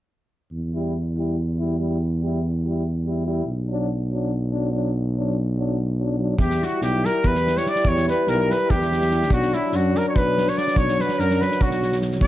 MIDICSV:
0, 0, Header, 1, 7, 480
1, 0, Start_track
1, 0, Tempo, 417537
1, 600, Time_signature, 7, 3, 24, 8
1, 14109, End_track
2, 0, Start_track
2, 0, Title_t, "Clarinet"
2, 0, Program_c, 0, 71
2, 7372, Note_on_c, 0, 67, 73
2, 7625, Note_on_c, 0, 66, 73
2, 7642, Note_off_c, 0, 67, 0
2, 7844, Note_off_c, 0, 66, 0
2, 7850, Note_on_c, 0, 67, 74
2, 8118, Note_on_c, 0, 70, 73
2, 8135, Note_off_c, 0, 67, 0
2, 8353, Note_on_c, 0, 71, 76
2, 8370, Note_off_c, 0, 70, 0
2, 8717, Note_on_c, 0, 73, 66
2, 8735, Note_off_c, 0, 71, 0
2, 8840, Note_on_c, 0, 74, 76
2, 8858, Note_off_c, 0, 73, 0
2, 9068, Note_on_c, 0, 73, 83
2, 9085, Note_off_c, 0, 74, 0
2, 9306, Note_off_c, 0, 73, 0
2, 9330, Note_on_c, 0, 71, 80
2, 9538, Note_on_c, 0, 70, 85
2, 9555, Note_off_c, 0, 71, 0
2, 9815, Note_on_c, 0, 71, 74
2, 9832, Note_off_c, 0, 70, 0
2, 10033, Note_on_c, 0, 67, 65
2, 10050, Note_off_c, 0, 71, 0
2, 10711, Note_off_c, 0, 67, 0
2, 10750, Note_on_c, 0, 66, 70
2, 11007, Note_on_c, 0, 64, 75
2, 11024, Note_off_c, 0, 66, 0
2, 11224, Note_on_c, 0, 66, 85
2, 11242, Note_off_c, 0, 64, 0
2, 11459, Note_on_c, 0, 70, 59
2, 11476, Note_off_c, 0, 66, 0
2, 11593, Note_off_c, 0, 70, 0
2, 11600, Note_on_c, 0, 73, 60
2, 11707, Note_on_c, 0, 71, 83
2, 11724, Note_off_c, 0, 73, 0
2, 12061, Note_on_c, 0, 73, 71
2, 12078, Note_off_c, 0, 71, 0
2, 12157, Note_on_c, 0, 74, 65
2, 12174, Note_off_c, 0, 73, 0
2, 12389, Note_on_c, 0, 73, 73
2, 12406, Note_off_c, 0, 74, 0
2, 12656, Note_on_c, 0, 71, 82
2, 12673, Note_off_c, 0, 73, 0
2, 12869, Note_on_c, 0, 70, 83
2, 12886, Note_off_c, 0, 71, 0
2, 13144, Note_on_c, 0, 71, 72
2, 13161, Note_off_c, 0, 70, 0
2, 13360, Note_on_c, 0, 66, 70
2, 13377, Note_off_c, 0, 71, 0
2, 13756, Note_off_c, 0, 66, 0
2, 14062, Note_on_c, 0, 74, 78
2, 14109, Note_off_c, 0, 74, 0
2, 14109, End_track
3, 0, Start_track
3, 0, Title_t, "Trumpet"
3, 0, Program_c, 1, 56
3, 7374, Note_on_c, 1, 67, 78
3, 7644, Note_on_c, 1, 66, 72
3, 7662, Note_off_c, 1, 67, 0
3, 7849, Note_off_c, 1, 66, 0
3, 7856, Note_on_c, 1, 67, 95
3, 8108, Note_on_c, 1, 70, 95
3, 8126, Note_off_c, 1, 67, 0
3, 8359, Note_on_c, 1, 71, 104
3, 8376, Note_off_c, 1, 70, 0
3, 8708, Note_on_c, 1, 73, 90
3, 8725, Note_off_c, 1, 71, 0
3, 8840, Note_on_c, 1, 74, 92
3, 8857, Note_off_c, 1, 73, 0
3, 9056, Note_on_c, 1, 73, 110
3, 9074, Note_off_c, 1, 74, 0
3, 9287, Note_off_c, 1, 73, 0
3, 9294, Note_on_c, 1, 71, 89
3, 9525, Note_on_c, 1, 70, 84
3, 9543, Note_off_c, 1, 71, 0
3, 9784, Note_on_c, 1, 71, 91
3, 9802, Note_off_c, 1, 70, 0
3, 10008, Note_on_c, 1, 67, 100
3, 10025, Note_off_c, 1, 71, 0
3, 10698, Note_off_c, 1, 67, 0
3, 10721, Note_on_c, 1, 66, 97
3, 10968, Note_on_c, 1, 64, 84
3, 10986, Note_off_c, 1, 66, 0
3, 11213, Note_on_c, 1, 66, 77
3, 11231, Note_off_c, 1, 64, 0
3, 11468, Note_on_c, 1, 70, 87
3, 11485, Note_off_c, 1, 66, 0
3, 11590, Note_off_c, 1, 70, 0
3, 11597, Note_on_c, 1, 73, 68
3, 11691, Note_on_c, 1, 71, 103
3, 11708, Note_off_c, 1, 73, 0
3, 12060, Note_on_c, 1, 73, 83
3, 12078, Note_off_c, 1, 71, 0
3, 12164, Note_on_c, 1, 74, 80
3, 12181, Note_off_c, 1, 73, 0
3, 12388, Note_on_c, 1, 73, 87
3, 12405, Note_off_c, 1, 74, 0
3, 12658, Note_on_c, 1, 71, 83
3, 12675, Note_off_c, 1, 73, 0
3, 12874, Note_on_c, 1, 70, 80
3, 12892, Note_off_c, 1, 71, 0
3, 13119, Note_on_c, 1, 71, 85
3, 13137, Note_off_c, 1, 70, 0
3, 13365, Note_on_c, 1, 66, 83
3, 13382, Note_off_c, 1, 71, 0
3, 13758, Note_off_c, 1, 66, 0
3, 14053, Note_on_c, 1, 74, 99
3, 14109, Note_off_c, 1, 74, 0
3, 14109, End_track
4, 0, Start_track
4, 0, Title_t, "French horn"
4, 0, Program_c, 2, 60
4, 852, Note_on_c, 2, 64, 41
4, 1084, Note_off_c, 2, 64, 0
4, 1347, Note_on_c, 2, 64, 38
4, 1578, Note_off_c, 2, 64, 0
4, 1821, Note_on_c, 2, 64, 50
4, 2050, Note_off_c, 2, 64, 0
4, 2058, Note_on_c, 2, 64, 40
4, 2281, Note_off_c, 2, 64, 0
4, 2565, Note_on_c, 2, 64, 54
4, 2784, Note_off_c, 2, 64, 0
4, 3063, Note_on_c, 2, 64, 41
4, 3280, Note_off_c, 2, 64, 0
4, 3536, Note_on_c, 2, 64, 48
4, 3751, Note_off_c, 2, 64, 0
4, 3762, Note_on_c, 2, 64, 49
4, 3976, Note_off_c, 2, 64, 0
4, 4245, Note_on_c, 2, 62, 57
4, 4467, Note_off_c, 2, 62, 0
4, 4748, Note_on_c, 2, 62, 42
4, 4966, Note_off_c, 2, 62, 0
4, 5203, Note_on_c, 2, 62, 52
4, 5427, Note_off_c, 2, 62, 0
4, 5432, Note_on_c, 2, 62, 51
4, 5654, Note_off_c, 2, 62, 0
4, 5933, Note_on_c, 2, 62, 44
4, 6153, Note_off_c, 2, 62, 0
4, 6421, Note_on_c, 2, 62, 40
4, 6644, Note_off_c, 2, 62, 0
4, 6884, Note_on_c, 2, 62, 46
4, 7109, Note_off_c, 2, 62, 0
4, 7114, Note_on_c, 2, 62, 40
4, 7336, Note_off_c, 2, 62, 0
4, 7352, Note_on_c, 2, 64, 50
4, 10682, Note_on_c, 2, 62, 58
4, 10700, Note_off_c, 2, 64, 0
4, 13856, Note_off_c, 2, 62, 0
4, 14060, Note_on_c, 2, 64, 49
4, 14109, Note_off_c, 2, 64, 0
4, 14109, End_track
5, 0, Start_track
5, 0, Title_t, "Euphonium"
5, 0, Program_c, 3, 58
5, 865, Note_on_c, 3, 55, 47
5, 1090, Note_off_c, 3, 55, 0
5, 1356, Note_on_c, 3, 55, 46
5, 1583, Note_off_c, 3, 55, 0
5, 1848, Note_on_c, 3, 55, 41
5, 2058, Note_off_c, 3, 55, 0
5, 2064, Note_on_c, 3, 55, 53
5, 2284, Note_off_c, 3, 55, 0
5, 2549, Note_on_c, 3, 55, 51
5, 2776, Note_off_c, 3, 55, 0
5, 3044, Note_on_c, 3, 55, 45
5, 3270, Note_off_c, 3, 55, 0
5, 3511, Note_on_c, 3, 55, 42
5, 3738, Note_off_c, 3, 55, 0
5, 3750, Note_on_c, 3, 55, 56
5, 3970, Note_off_c, 3, 55, 0
5, 4245, Note_on_c, 3, 54, 51
5, 4467, Note_off_c, 3, 54, 0
5, 4740, Note_on_c, 3, 54, 51
5, 4962, Note_off_c, 3, 54, 0
5, 5226, Note_on_c, 3, 54, 45
5, 5439, Note_off_c, 3, 54, 0
5, 5444, Note_on_c, 3, 54, 49
5, 5660, Note_off_c, 3, 54, 0
5, 5945, Note_on_c, 3, 54, 53
5, 6160, Note_off_c, 3, 54, 0
5, 6417, Note_on_c, 3, 54, 53
5, 6642, Note_off_c, 3, 54, 0
5, 6889, Note_on_c, 3, 54, 38
5, 7111, Note_off_c, 3, 54, 0
5, 7122, Note_on_c, 3, 54, 42
5, 7340, Note_off_c, 3, 54, 0
5, 7348, Note_on_c, 3, 55, 65
5, 10651, Note_off_c, 3, 55, 0
5, 10704, Note_on_c, 3, 54, 72
5, 14038, Note_on_c, 3, 55, 69
5, 14055, Note_off_c, 3, 54, 0
5, 14109, Note_off_c, 3, 55, 0
5, 14109, End_track
6, 0, Start_track
6, 0, Title_t, "Tuba"
6, 0, Program_c, 4, 58
6, 596, Note_on_c, 4, 40, 56
6, 3927, Note_off_c, 4, 40, 0
6, 3972, Note_on_c, 4, 35, 70
6, 7295, Note_off_c, 4, 35, 0
6, 7336, Note_on_c, 4, 40, 73
6, 7609, Note_off_c, 4, 40, 0
6, 7831, Note_on_c, 4, 35, 89
6, 8102, Note_off_c, 4, 35, 0
6, 8324, Note_on_c, 4, 40, 71
6, 8706, Note_off_c, 4, 40, 0
6, 9033, Note_on_c, 4, 40, 80
6, 9299, Note_off_c, 4, 40, 0
6, 9518, Note_on_c, 4, 35, 93
6, 9786, Note_off_c, 4, 35, 0
6, 10004, Note_on_c, 4, 40, 76
6, 10702, Note_on_c, 4, 35, 92
6, 10719, Note_off_c, 4, 40, 0
6, 10969, Note_off_c, 4, 35, 0
6, 11190, Note_on_c, 4, 42, 92
6, 11458, Note_off_c, 4, 42, 0
6, 11673, Note_on_c, 4, 35, 66
6, 12055, Note_off_c, 4, 35, 0
6, 12375, Note_on_c, 4, 35, 74
6, 12642, Note_off_c, 4, 35, 0
6, 12866, Note_on_c, 4, 42, 92
6, 13134, Note_off_c, 4, 42, 0
6, 13347, Note_on_c, 4, 35, 67
6, 14039, Note_on_c, 4, 40, 72
6, 14056, Note_off_c, 4, 35, 0
6, 14109, Note_off_c, 4, 40, 0
6, 14109, End_track
7, 0, Start_track
7, 0, Title_t, "Drums"
7, 7340, Note_on_c, 9, 36, 64
7, 7455, Note_off_c, 9, 36, 0
7, 7479, Note_on_c, 9, 38, 21
7, 7594, Note_off_c, 9, 38, 0
7, 7618, Note_on_c, 9, 38, 27
7, 7733, Note_off_c, 9, 38, 0
7, 7835, Note_on_c, 9, 38, 22
7, 7950, Note_off_c, 9, 38, 0
7, 8103, Note_on_c, 9, 38, 21
7, 8218, Note_off_c, 9, 38, 0
7, 8326, Note_on_c, 9, 36, 51
7, 8441, Note_off_c, 9, 36, 0
7, 8449, Note_on_c, 9, 38, 18
7, 8564, Note_off_c, 9, 38, 0
7, 8586, Note_on_c, 9, 38, 22
7, 8699, Note_off_c, 9, 38, 0
7, 8699, Note_on_c, 9, 38, 23
7, 8810, Note_off_c, 9, 38, 0
7, 8810, Note_on_c, 9, 38, 25
7, 8915, Note_off_c, 9, 38, 0
7, 8915, Note_on_c, 9, 38, 18
7, 9020, Note_on_c, 9, 36, 58
7, 9030, Note_off_c, 9, 38, 0
7, 9135, Note_off_c, 9, 36, 0
7, 9159, Note_on_c, 9, 38, 21
7, 9274, Note_off_c, 9, 38, 0
7, 9287, Note_on_c, 9, 38, 22
7, 9402, Note_off_c, 9, 38, 0
7, 9511, Note_on_c, 9, 38, 22
7, 9626, Note_off_c, 9, 38, 0
7, 9779, Note_on_c, 9, 38, 23
7, 9894, Note_off_c, 9, 38, 0
7, 10004, Note_on_c, 9, 36, 70
7, 10119, Note_off_c, 9, 36, 0
7, 10133, Note_on_c, 9, 38, 19
7, 10248, Note_off_c, 9, 38, 0
7, 10258, Note_on_c, 9, 38, 24
7, 10365, Note_off_c, 9, 38, 0
7, 10365, Note_on_c, 9, 38, 25
7, 10479, Note_off_c, 9, 38, 0
7, 10479, Note_on_c, 9, 38, 24
7, 10594, Note_off_c, 9, 38, 0
7, 10602, Note_on_c, 9, 38, 19
7, 10695, Note_on_c, 9, 36, 69
7, 10717, Note_off_c, 9, 38, 0
7, 10810, Note_off_c, 9, 36, 0
7, 10834, Note_on_c, 9, 38, 25
7, 10949, Note_off_c, 9, 38, 0
7, 10956, Note_on_c, 9, 38, 25
7, 11071, Note_off_c, 9, 38, 0
7, 11178, Note_on_c, 9, 38, 27
7, 11293, Note_off_c, 9, 38, 0
7, 11443, Note_on_c, 9, 38, 26
7, 11558, Note_off_c, 9, 38, 0
7, 11677, Note_on_c, 9, 36, 68
7, 11792, Note_off_c, 9, 36, 0
7, 11932, Note_on_c, 9, 38, 27
7, 12042, Note_off_c, 9, 38, 0
7, 12042, Note_on_c, 9, 38, 25
7, 12157, Note_off_c, 9, 38, 0
7, 12161, Note_on_c, 9, 38, 25
7, 12270, Note_off_c, 9, 38, 0
7, 12270, Note_on_c, 9, 38, 24
7, 12373, Note_on_c, 9, 36, 60
7, 12385, Note_off_c, 9, 38, 0
7, 12488, Note_off_c, 9, 36, 0
7, 12512, Note_on_c, 9, 38, 26
7, 12627, Note_off_c, 9, 38, 0
7, 12640, Note_on_c, 9, 38, 27
7, 12746, Note_off_c, 9, 38, 0
7, 12746, Note_on_c, 9, 38, 26
7, 12861, Note_off_c, 9, 38, 0
7, 12866, Note_on_c, 9, 38, 25
7, 12980, Note_off_c, 9, 38, 0
7, 12996, Note_on_c, 9, 38, 24
7, 13111, Note_off_c, 9, 38, 0
7, 13128, Note_on_c, 9, 38, 25
7, 13234, Note_off_c, 9, 38, 0
7, 13234, Note_on_c, 9, 38, 21
7, 13345, Note_on_c, 9, 36, 64
7, 13349, Note_off_c, 9, 38, 0
7, 13460, Note_off_c, 9, 36, 0
7, 13464, Note_on_c, 9, 38, 21
7, 13579, Note_off_c, 9, 38, 0
7, 13595, Note_on_c, 9, 38, 25
7, 13707, Note_off_c, 9, 38, 0
7, 13707, Note_on_c, 9, 38, 24
7, 13814, Note_off_c, 9, 38, 0
7, 13814, Note_on_c, 9, 38, 29
7, 13929, Note_off_c, 9, 38, 0
7, 13930, Note_on_c, 9, 38, 17
7, 14038, Note_on_c, 9, 36, 72
7, 14045, Note_off_c, 9, 38, 0
7, 14109, Note_off_c, 9, 36, 0
7, 14109, End_track
0, 0, End_of_file